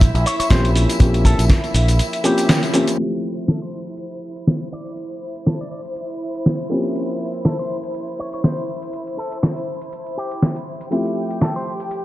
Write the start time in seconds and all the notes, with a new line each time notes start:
Already playing: A#1 F3 A#3 C4 C#4 E4 G4 E5
0.01 kick, closed hi-hat, tambourine, shaker
0.14 A#1, closed hi-hat, tambourine
0.26 C#5, open hi-hat, shaker
0.39 C#5, muted fingered electric bass stroke, closed hi-hat, tambourine, shaker
0.50 A#1 F3 A#3 C4 C#4 G4 C5, kick, snare, closed hi-hat, tambourine, shaker
0.65 closed hi-hat, tambourine
0.76 open hi-hat, shaker
0.90 closed hi-hat, tambourine, shaker
0.99 A#1 F3 A#3 C4 C#4 G4, kick, closed hi-hat, tambourine, shaker
1.14 closed hi-hat, tambourine
1.25 A4, kick, open hi-hat, shaker
1.39 A#1, closed hi-hat, tambourine, shaker
1.49 kick, cross-stick, snare, closed hi-hat, tambourine, shaker
1.64 closed hi-hat, tambourine
1.74 A#1, open hi-hat, shaker
1.88 closed hi-hat, tambourine, shaker
1.99 closed hi-hat, tambourine, shaker
2.13 closed hi-hat, tambourine
2.24 F3 A#3 C4 C#4 G4, open hi-hat, shaker
2.38 open hi-hat, tambourine, shaker
2.49 snare, closed hi-hat, tambourine, shaker
2.63 closed hi-hat, tambourine
2.73 F3 A#3 C4 C#4 G4, open hi-hat, shaker
2.87 closed hi-hat, tambourine, shaker
2.97 F3 A3 C4 E4 G4 C5, closed hi-hat
3.37 closed hi-hat
3.48 A4, cross-stick, snare, closed hi-hat
3.62 C5
3.87 closed hi-hat
3.97 closed hi-hat
4.11 closed hi-hat
4.36 closed hi-hat, tambourine
4.47 snare, closed hi-hat
4.61 closed hi-hat
4.72 D5
4.86 closed hi-hat, tambourine
4.97 closed hi-hat
5.11 closed hi-hat
5.36 closed hi-hat, tambourine
5.46 A4, cross-stick, snare, closed hi-hat, tambourine
5.60 D5, tambourine
5.71 D5
5.85 closed hi-hat, tambourine
5.95 closed hi-hat, tambourine
6.10 closed hi-hat, tambourine
6.35 closed hi-hat, tambourine
6.46 snare, closed hi-hat
6.60 closed hi-hat, tambourine
6.69 F3 A#3 C4 C#4 G4
6.85 closed hi-hat, tambourine
6.96 closed hi-hat, tambourine
7.09 closed hi-hat, tambourine
7.33 closed hi-hat, tambourine
7.44 A4, cross-stick, snare, closed hi-hat, tambourine
7.59 C5, tambourine
7.84 closed hi-hat, tambourine
7.94 closed hi-hat, tambourine
8.08 closed hi-hat, tambourine
8.19 C#5
8.33 C#5, closed hi-hat, tambourine
8.44 C5, snare, closed hi-hat, tambourine
8.58 closed hi-hat, tambourine
8.82 closed hi-hat, tambourine
8.93 closed hi-hat, tambourine
9.07 closed hi-hat, tambourine
9.18 A4
9.32 closed hi-hat, tambourine
9.43 cross-stick, snare, closed hi-hat, tambourine
9.57 closed hi-hat, tambourine
9.81 closed hi-hat, tambourine
9.92 closed hi-hat, tambourine
10.07 closed hi-hat, tambourine
10.18 G4
10.31 closed hi-hat, tambourine
10.42 snare, closed hi-hat, tambourine
10.56 closed hi-hat, tambourine
10.81 closed hi-hat, tambourine
10.90 F3 A3 C4 E4 G4 G5, closed hi-hat, tambourine
11.06 closed hi-hat, tambourine
11.31 closed hi-hat, tambourine
11.41 A4, cross-stick, snare, closed hi-hat
11.56 C5, tambourine
11.80 closed hi-hat, tambourine
11.90 closed hi-hat, tambourine